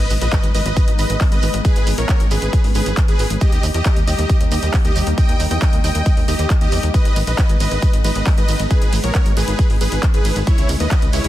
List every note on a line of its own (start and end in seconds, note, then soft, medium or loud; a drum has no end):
0.00 3.38 G#3 medium
0.00 3.38 B3 medium
0.00 1.63 D#4 medium
0.00 0.10 B4 medium
0.00 0.10 D#5 loud
0.00 impact medium
0.10 0.18 G#1 medium
0.10 open hi-hat loud
0.10 shekere loud
0.21 0.29 A#1 medium
0.21 0.43 B4 medium
0.21 0.43 D#5 loud
0.21 closed hi-hat medium
0.21 shekere soft
0.32 kick loud
0.32 clap loud
0.32 closed hi-hat medium
0.32 shekere medium
0.43 0.51 G#1 medium
0.43 closed hi-hat medium
0.43 shekere soft
0.55 0.62 G#1 loud
0.55 0.84 B4 medium
0.55 0.84 D#5 loud
0.55 open hi-hat loud
0.55 shekere medium
0.66 0.73 G#1 medium
0.66 closed hi-hat medium
0.66 shekere soft
0.77 kick loud
0.77 closed hi-hat medium
0.77 shekere medium
0.88 0.95 G#1 medium
0.88 closed hi-hat medium
0.88 shekere soft
0.99 1.06 G#1 loud
0.99 1.20 B4 medium
0.99 1.21 D#5 loud
0.99 open hi-hat loud
0.99 shekere medium
1.09 1.17 G#1 medium
1.09 closed hi-hat medium
1.09 shekere soft
1.20 kick loud
1.20 clap loud
1.20 open hi-hat medium
1.20 shekere medium
1.31 1.39 G#1 medium
1.31 1.54 B4 medium
1.31 1.54 D#5 loud
1.31 closed hi-hat medium
1.31 shekere soft
1.42 1.50 G#1 loud
1.42 open hi-hat loud
1.42 shekere medium
1.54 1.61 G#1 loud
1.54 closed hi-hat medium
1.54 shekere soft
1.65 3.40 C#4 medium
1.65 1.87 G#4 medium
1.65 1.87 B4 loud
1.65 kick loud
1.65 closed hi-hat medium
1.65 shekere medium
1.76 1.83 G#1 medium
1.76 closed hi-hat medium
1.76 shekere soft
1.87 1.94 G#1 loud
1.87 open hi-hat loud
1.87 shekere medium
1.98 2.05 A#1 medium
1.98 2.20 A#4 medium
1.98 2.20 C#5 loud
1.98 closed hi-hat medium
1.98 shekere soft
2.09 kick loud
2.09 clap loud
2.09 closed hi-hat medium
2.09 shekere medium
2.20 2.27 G#1 medium
2.20 closed hi-hat medium
2.20 shekere soft
2.31 2.38 G#1 loud
2.31 2.60 G#4 medium
2.31 2.60 B4 loud
2.31 open hi-hat loud
2.31 shekere loud
2.42 2.49 G#1 medium
2.42 closed hi-hat medium
2.42 shekere soft
2.53 kick loud
2.53 closed hi-hat medium
2.53 shekere soft
2.64 2.71 G#1 medium
2.64 open hi-hat medium
2.64 shekere soft
2.75 2.82 G#1 loud
2.75 2.97 G#4 medium
2.75 2.97 B4 loud
2.75 open hi-hat loud
2.75 shekere medium
2.86 2.93 G#1 loud
2.86 closed hi-hat medium
2.86 shekere soft
2.97 kick loud
2.97 clap loud
2.97 closed hi-hat medium
2.97 shekere medium
3.08 3.15 G#1 medium
3.08 3.30 G#4 medium
3.08 3.30 B4 loud
3.08 closed hi-hat medium
3.08 shekere soft
3.19 3.26 G#1 loud
3.19 open hi-hat loud
3.19 shekere medium
3.30 3.37 G#1 loud
3.30 closed hi-hat medium
3.30 shekere soft
3.40 6.91 G3 medium
3.40 6.91 A#3 medium
3.40 6.91 D#4 medium
3.40 3.63 G4 medium
3.40 3.63 D#5 loud
3.40 kick loud
3.40 closed hi-hat medium
3.40 shekere medium
3.52 3.60 D#2 medium
3.52 closed hi-hat medium
3.52 shekere soft
3.63 3.71 D#2 loud
3.63 open hi-hat loud
3.63 shekere medium
3.74 3.82 E2 medium
3.74 3.96 G4 medium
3.74 3.96 D#5 loud
3.74 closed hi-hat medium
3.74 shekere soft
3.85 kick loud
3.85 clap loud
3.85 closed hi-hat medium
3.85 shekere medium
3.96 4.04 D#2 medium
3.96 closed hi-hat medium
3.96 shekere soft
4.07 4.15 D#2 loud
4.07 4.36 G4 medium
4.07 4.36 D#5 loud
4.07 open hi-hat loud
4.07 shekere loud
4.18 4.26 D#2 medium
4.18 closed hi-hat medium
4.18 shekere soft
4.29 kick loud
4.29 closed hi-hat medium
4.29 shekere medium
4.41 4.48 D#2 medium
4.41 closed hi-hat medium
4.41 shekere soft
4.51 4.59 D#2 loud
4.51 4.73 G4 medium
4.51 4.73 D#5 loud
4.51 open hi-hat loud
4.51 shekere loud
4.63 4.70 D#2 loud
4.63 closed hi-hat medium
4.63 shekere soft
4.74 kick loud
4.74 clap loud
4.74 open hi-hat medium
4.74 shekere medium
4.85 4.92 D#2 medium
4.85 5.06 G4 medium
4.85 5.06 D#5 loud
4.85 closed hi-hat medium
4.85 shekere soft
4.96 5.03 D#2 loud
4.96 open hi-hat loud
4.96 shekere loud
5.06 5.14 D#2 medium
5.06 closed hi-hat medium
5.06 shekere soft
5.18 5.40 D#5 medium
5.18 5.40 G5 loud
5.18 kick loud
5.18 closed hi-hat medium
5.18 shekere medium
5.29 5.36 D#2 medium
5.29 closed hi-hat medium
5.29 shekere soft
5.40 5.47 D#2 loud
5.40 open hi-hat loud
5.40 shekere loud
5.50 5.58 E2 medium
5.50 5.73 D#5 medium
5.50 5.73 G5 loud
5.50 closed hi-hat medium
5.50 shekere soft
5.61 kick loud
5.61 clap loud
5.61 closed hi-hat medium
5.61 shekere medium
5.73 5.80 D#2 medium
5.73 closed hi-hat medium
5.73 shekere soft
5.84 5.91 D#2 loud
5.84 6.13 D#5 medium
5.84 6.13 G5 loud
5.84 open hi-hat loud
5.84 shekere medium
5.94 6.02 D#2 medium
5.94 closed hi-hat medium
5.94 shekere soft
6.05 kick loud
6.05 closed hi-hat medium
6.05 shekere medium
6.17 6.24 D#2 medium
6.17 open hi-hat medium
6.17 shekere soft
6.28 6.35 D#2 loud
6.28 6.50 G4 medium
6.28 6.50 D#5 loud
6.28 open hi-hat loud
6.28 shekere medium
6.39 6.46 D#2 loud
6.39 closed hi-hat medium
6.39 shekere soft
6.50 kick loud
6.50 clap loud
6.50 closed hi-hat medium
6.50 shekere medium
6.61 6.68 D#2 medium
6.61 6.83 G4 medium
6.61 6.83 D#5 loud
6.61 closed hi-hat medium
6.61 shekere soft
6.72 6.79 E2 loud
6.72 open hi-hat loud
6.72 shekere loud
6.83 6.90 D#2 loud
6.83 closed hi-hat medium
6.83 shekere soft
6.94 11.28 G#3 medium
6.94 10.44 B3 medium
6.94 10.44 D#4 medium
6.94 7.16 B4 medium
6.94 7.16 D#5 loud
6.94 kick loud
6.94 closed hi-hat medium
6.94 shekere medium
7.05 7.12 G#1 medium
7.05 closed hi-hat medium
7.05 shekere soft
7.16 7.23 G#1 loud
7.16 open hi-hat loud
7.16 ride medium
7.16 shekere medium
7.27 7.34 A#1 medium
7.27 7.49 B4 medium
7.27 7.49 D#5 loud
7.27 closed hi-hat medium
7.27 shekere soft
7.38 kick loud
7.38 clap loud
7.38 closed hi-hat medium
7.38 shekere soft
7.49 7.57 G#1 medium
7.49 closed hi-hat medium
7.49 shekere soft
7.60 7.68 G#1 loud
7.60 7.89 B4 medium
7.60 7.89 D#5 loud
7.60 open hi-hat loud
7.60 ride medium
7.60 shekere medium
7.71 7.79 G#1 medium
7.71 closed hi-hat medium
7.71 shekere soft
7.82 kick loud
7.82 closed hi-hat medium
7.82 shekere medium
7.93 8.01 G#1 medium
7.93 closed hi-hat medium
7.93 shekere soft
8.04 8.12 G#1 loud
8.04 8.26 B4 medium
8.04 8.26 D#5 loud
8.04 open hi-hat loud
8.04 ride medium
8.04 shekere loud
8.15 8.23 G#1 loud
8.15 closed hi-hat medium
8.15 shekere soft
8.27 kick loud
8.27 clap loud
8.27 open hi-hat medium
8.27 shekere soft
8.37 8.45 G#1 medium
8.37 8.59 B4 medium
8.37 8.59 D#5 loud
8.37 closed hi-hat medium
8.37 shekere soft
8.48 8.56 G#1 loud
8.48 open hi-hat loud
8.48 ride medium
8.48 shekere loud
8.59 8.67 G#1 loud
8.59 closed hi-hat medium
8.59 shekere soft
8.70 8.92 G#4 medium
8.70 8.92 B4 loud
8.70 kick loud
8.70 closed hi-hat medium
8.70 shekere medium
8.82 8.89 G#1 medium
8.82 closed hi-hat medium
8.82 shekere soft
8.93 9.00 G#1 loud
8.93 open hi-hat loud
8.93 ride medium
8.93 shekere loud
9.03 9.11 A#1 medium
9.03 9.26 A#4 medium
9.03 9.26 C#5 loud
9.03 closed hi-hat medium
9.03 shekere soft
9.15 kick loud
9.15 clap loud
9.15 closed hi-hat medium
9.15 shekere soft
9.26 9.33 G#1 medium
9.26 closed hi-hat medium
9.26 shekere soft
9.37 9.44 G#1 loud
9.37 9.66 G#4 medium
9.37 9.66 B4 loud
9.37 open hi-hat loud
9.37 ride medium
9.37 shekere medium
9.48 9.55 G#1 medium
9.48 closed hi-hat medium
9.48 shekere soft
9.59 kick loud
9.59 closed hi-hat medium
9.59 shekere medium
9.70 9.77 G#1 medium
9.70 open hi-hat medium
9.70 shekere soft
9.81 9.88 G#1 loud
9.81 10.03 G#4 medium
9.81 10.03 B4 loud
9.81 open hi-hat loud
9.81 ride medium
9.81 shekere medium
9.92 9.99 G#1 loud
9.92 closed hi-hat medium
9.92 shekere soft
10.03 kick loud
10.03 clap loud
10.03 closed hi-hat medium
10.03 shekere medium
10.14 10.21 G#1 medium
10.14 10.36 G#4 medium
10.14 10.36 B4 loud
10.14 closed hi-hat medium
10.14 shekere soft
10.25 10.32 G#1 loud
10.25 open hi-hat loud
10.25 ride medium
10.25 shekere medium
10.36 10.43 G#1 loud
10.36 closed hi-hat medium
10.36 shekere soft
10.47 11.28 C#4 medium
10.47 10.69 E4 medium
10.47 11.28 E4 medium
10.47 10.69 C#5 loud
10.47 kick loud
10.47 closed hi-hat medium
10.47 shekere medium
10.58 10.65 C#2 medium
10.58 closed hi-hat medium
10.58 shekere soft
10.69 10.76 C#2 loud
10.69 open hi-hat loud
10.69 ride medium
10.69 shekere medium
10.80 10.87 D#2 medium
10.80 11.02 B4 medium
10.80 11.02 D#5 loud
10.80 closed hi-hat medium
10.80 shekere soft
10.91 kick loud
10.91 clap loud
10.91 closed hi-hat medium
10.91 shekere medium
11.02 11.10 C#2 medium
11.02 closed hi-hat medium
11.02 shekere soft
11.13 11.21 C#2 loud
11.13 11.28 E4 medium
11.13 11.28 C#5 loud
11.13 open hi-hat loud
11.13 ride medium
11.13 shekere medium
11.24 11.28 C#2 medium
11.24 closed hi-hat medium
11.24 shekere soft